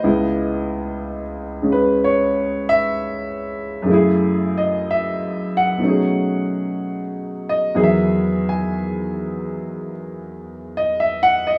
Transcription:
grand piano
Already playing: D#5
0.04 C#2 C#3 B3 E4
1.62 C#3 G#3 C#4
1.72 B4
2.04 C#5
2.69 E5
3.82 F#2 C#3
3.88 A3 E4
3.94 G#4
4.58 D#5
4.91 E5
5.57 F#5
5.77 B2 F#3
5.82 A3 C#4 D#4
5.88 G#4
7.49 D#5
7.75 E2 D#3 E3 F#3 G#4
7.83 E5
8.49 G#5
10.77 D#5
11.00 E5
11.23 F#5
11.47 D#5

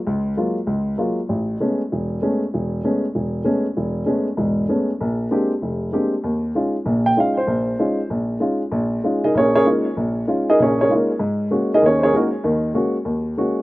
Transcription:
grand piano
0.07 C#2
0.37 F#3 G#3 A#3 F4
0.67 C#2
0.98 F#3 G#3 A#3 F4
1.29 A1
1.60 G#3 A3 B3 C#4
1.92 E1
2.22 G#3 A3 B3 C#4
2.54 E1
2.84 G#3 A3 B3 C#4
3.15 E1
3.44 G#3 A3 B3 C#4
3.77 E1
4.06 G#3 A3 B3 C#4
4.37 E1 G#2
4.69 G#3 A3 B3 C#4
5.01 A#1
5.31 G#3 A#3 C4 D4 G4
5.62 F1
5.92 G#3 A#3 C4 D4 G4
6.24 D#2
6.55 G#3 C#4 D#4 F4
6.86 A#1 A#2
7.06 G5
7.17 G#3 C#4 D#4 F4 F5
7.37 C5
7.47 A#1
7.79 G#3 C#4 D#4 F4
8.10 A#1
8.40 G#3 C#4 D#4 F4
8.72 A#1
9.04 G#3 C#4 D#4 F4
9.24 D#4 G#4 A#4 D#5
9.35 A#1 C#4 G#4 A#4 C#5
9.55 C#4 G#4 A#4 C#5
9.65 G#3 A#3 C#4 D#4 F4
9.97 A#1
10.27 G#3 C#4 D#4 F4
10.50 D#4 G#4 A#4 D#5
10.59 A#1 A#2 C#4 G#4 A#4 C#5
10.81 C#4 G#4 A#4 C#5
10.89 G#3 C#4 D#4 F4
10.95 A#3 D#4 F4 A#4
11.19 G#2
11.51 G#3 A#3 C#4 F#4
11.74 D#4 G#4 A#4 D#5
11.82 D#2 D#3 C#5
11.87 C#4 G#4 A#4
11.99 C5
12.03 C#4 G#4 A#4 C#5
12.12 G#3 A#3 C#4 F#4 A#4
12.16 A#3 D#4 F#4
12.44 D#2 D#3
12.74 G#3 A#3 C#4 F#4
13.05 D#2
13.37 G#3 A#3 C#4 F#4

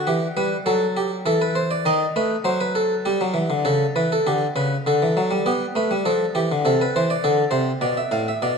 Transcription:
harpsichord
0.07 E3 G4
0.37 G3 B4
0.66 F#3 A4
0.97 G4
1.26 E3 A4
1.42 B4
1.55 C5
1.71 D5
1.86 D#3 D#5
2.16 A3 B4
2.44 F#3 C5
2.61 B4
2.75 A4
3.05 G3 G4
3.21 F#3
3.34 E3
3.50 D3
3.65 C#3 A4
3.96 E3 B4
4.12 A4
4.27 D3 G4
4.56 C#3 B4
4.86 D3 A4
5.02 E3
5.17 F#3
5.31 G3
5.46 B3 G4
5.75 A3 B4
5.91 G3
6.05 F3 A4
6.35 E3 G4
6.52 D3
6.65 C3 A4
6.81 B4
6.96 E3 C5
7.10 D5
7.24 D3 A4
7.51 C3 C5
7.81 B2 D5
7.97 E5
8.11 A2 F5
8.28 E5
8.42 B2 D5

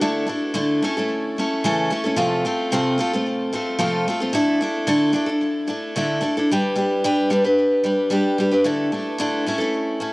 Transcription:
steel-string acoustic guitar
0.01 D3 A3 D4 E4 A4
0.27 A3 D4 E4 A4
0.54 D3 A3 D4 E4 A4
0.83 A3 C#4 E4 A4
0.97 A3 C#4 E4 A4
1.38 A3 C#4 E4 A4
1.64 C#3 E3 A3 C#4 E4 A4
1.90 A3 C#4 E4 A4
2.04 A3 C#4 E4 A4
2.17 C3 F3 A3 C4 F4 A4
2.45 A3 C4 F4 A4
2.72 C3 F3 A3 C4 F4 A4
2.98 A3 C4 F4 A4
3.13 A3 C4 F4 A4
3.53 A3 C4 F4 A4
3.79 C3 F3 A3 C4 F4 A4
4.08 A3 C4 F4 A4
4.20 A3 C4 F4 A4
4.33 D3 A3 D4 E4 A4
4.60 A3 D4 E4 A4
4.87 D3 A3 D4 E4 A4
5.12 A3 D4 E4 A4
5.26 D4 E4 A4
5.67 A3 D4 E4 A4
5.96 D3 A3 D4 E4 A4
6.21 A3 D4 E4 A4
6.37 D4 E4 A4
6.51 G3 D4 G4 B4
6.75 G3 D4 G4 B4
7.04 G3 D4 G4 B4
7.30 G3 D4 G4 B4
7.44 D4 G4 B4
7.84 G3 D4 G4 B4
8.10 G3 D4 G4 B4
8.38 G3 D4 G4 B4
8.51 D4 G4 B4
8.64 D3 A3 D4 E4 A4
8.92 A3 D4 E4 A4
9.18 D3 A3 D4 E4 A4
9.46 A3 C#4 E4 A4
9.58 A3 C#4 E4 A4
10.00 A3 C#4 E4 A4

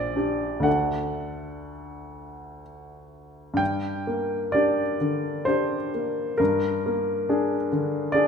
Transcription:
grand piano
Already playing: A#1 D5
0.16 D4 G4
0.60 D2 A3 D4 F#5
0.64 A4
3.54 G2 G5
4.07 A#3
4.52 D4 G4 D5
5.00 D3
5.45 D4 G4 C5
5.94 A#3
6.38 G2 A#4
6.86 A#3
7.29 D4 G#4
7.72 D3
8.12 D4 G#4 D5

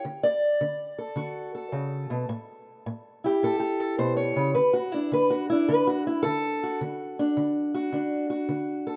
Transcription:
steel-string acoustic guitar
Already playing: G5
0.05 D3
0.23 D5
0.61 D3
0.99 A4
1.16 D3 F#4
1.55 A4
1.72 C#3
2.10 B2
2.29 A2
2.86 A2
3.24 E4 G4
3.43 A2 A4
3.60 G4
3.80 A4
3.98 B2 C5
4.17 C#5
4.36 C#3
4.55 D3 B4
4.73 F#4
4.92 D4 E4
5.12 D3 B4
5.30 F#4
5.50 D4 E4
5.69 D3 B4
5.87 F#4
6.07 E4
6.23 D3 A4
6.63 F#4
6.81 D3
7.19 D4
7.37 D3
7.75 F#4
7.92 D3 D4
8.30 F#4
8.49 D3
8.87 A4

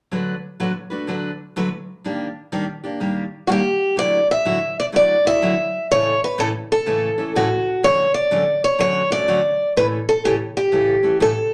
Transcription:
steel-string acoustic guitar
0.11 D3 F#3 A3 D4 F#4 B4
0.60 D3 F#3 A3 D4 F#4 B4
0.90 A3 D4 F#4 B4
1.07 D3 F#3 A3 D4 F#4 B4
1.56 D3 F#3 A3 D4 F#4 B4
2.04 D#3 G3 A#3 D4 G4
2.52 D#3 G3 A#3 D4 G4
2.84 A#3 D4 G4
3.00 D#3 G3 A#3 D4 G4
3.47 D#3 G3 A#3 D4 F#4 G4
3.52 G4
3.96 D3 F#3 A3 E4 F#4 D5
4.31 E5
4.45 D3 F#3 A3 E4 F#4
4.80 D5
4.92 D3 F#3 A3 E4 F#4 D5
5.25 A3 E4 F#4 E5
5.42 D3 F#3 A3 E4 F#4
5.91 A2 C#3 E3 A3 C#4 A4 C#5
6.24 B4
6.38 A2 C#3 E3 A3 C#4 A4
6.72 A4
6.86 A2 C#3 E3 A3 C#4 A4
7.18 E3 A3 C#4 A4
7.35 A2 C#3 E3 A3 C#4 F#4 A4
7.83 D3 F#3 A3 C#4 F#4 C#5
8.14 D5
8.31 D3 F#3 A3 C#4 F#4
8.64 C#5
8.78 D3 F#3 A3 C#4 F#4 C#5
9.10 A3 C#4 F#4 D5
9.28 D3 F#3 A3 C#4 F#4
9.76 A2 C#3 E3 A3 C#4 A4 B4
10.09 A4
10.25 A2 C#3 E3 A3 C#4 G4 A4
10.57 G4
10.72 A2 C#3 E3 A3 C#4 A4
11.03 E3 A3 C#4 A4
11.20 A2 C#3 E3 A3 C#4 A4

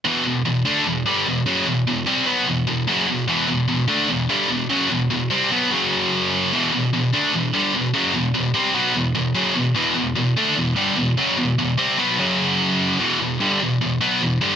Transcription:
distorted electric guitar
0.05 E2 B2 E3
0.25 E2 B2
0.45 E2 B2
0.65 D3 A3 D4
0.86 E2 B2
1.06 G2 D3 G3
1.27 E2 B2
1.46 F#2 C#3 F#3
1.66 E2 B2
1.87 E2 B2
2.06 C3 G3 C4
2.26 B2 F#3 B3
2.47 E2 B2
2.67 E2 B2
2.87 F#2 C#3 F#3
3.08 E2 B2
3.28 E2 B2 E3
3.48 E2 B2
3.68 E2 B2
3.88 D3 A3 D4
4.09 E2 B2
4.29 G2 D3 G3
4.49 E2 B2
4.70 F#2 C#3 F#3
4.90 E2 B2
5.10 E2 B2
5.30 C3 G3 C4
5.51 B2 F#3 B3
5.71 F#2 C#3 F#3
6.53 E2 B2 E3
6.73 E2 B2
6.93 E2 B2
7.13 D3 A3 D4
7.33 E2 B2
7.54 G2 D3 G3
7.74 E2 B2
7.94 F#2 C#3 F#3
8.14 E2 B2
8.34 E2 B2
8.54 C3 G3 C4
8.74 B2 F#3 B3
8.95 E2 B2
9.15 E2 B2
9.35 F#2 C#3 F#3
9.55 E2 B2
9.75 E2 B2 E3
9.95 E2 B2
10.15 E2 B2
10.37 D3 A3 D4
10.56 E2 B2
10.76 G2 D3 G3
10.97 E2 B2
11.17 F#2 C#3 F#3
11.38 E2 B2
11.59 E2 B2
11.78 C3 G3 C4
11.98 B2 F#3 B3
12.19 F#2 C#3 F#3
12.99 E2 B2 E3
13.20 E2 B2
13.40 G2 D3 G3
13.61 E2 B2
13.81 E2 B2
14.01 B2 F#3 B3
14.21 E2 B2
14.41 G2 D3 G3

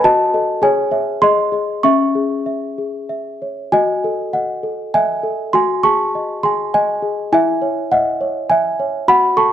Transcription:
celesta
0.04 F#4 D#5 A5
0.34 A4 D#5
0.62 G#4 C#5 G#5
0.91 C#5 E5
1.22 G#4 D#5 C6
1.52 G#4 D#5
1.83 C#4 E5 C#6
2.15 G#4
2.46 E5
2.78 G#4
3.09 E5
3.42 C#5
3.72 F#4 D#5 G#5
4.04 A4
4.33 D#5 F#5
4.63 A4
4.94 D#5 E5 G#5
5.23 A4
5.53 F#4 G#5 C6
5.83 G#4 A5 C#6
6.15 D#5
6.43 G#4 G#5 C6
6.74 D#5 G#5
7.02 G#4
7.32 E4 E5 G#5
7.62 C#5
7.92 D#5 E5 F#5
8.21 C#5
8.50 E5 G#5
8.80 C#5
9.08 F#4 F#5 B5
9.37 A4 A5 C#6

